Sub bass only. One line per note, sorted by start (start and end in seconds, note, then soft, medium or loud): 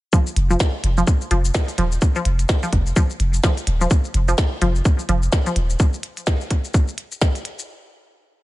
0.36 0.56 F1 loud
0.84 1.03 F1 medium
1.31 1.50 F1 medium
1.78 1.98 D#1 medium
2.26 2.45 F1 loud
2.73 2.92 F1 medium
3.20 3.39 F1 medium
3.67 3.86 D#1 medium
4.14 4.34 F1 loud
4.62 4.81 F1 medium
5.09 5.28 F1 medium
5.56 5.75 D#1 loud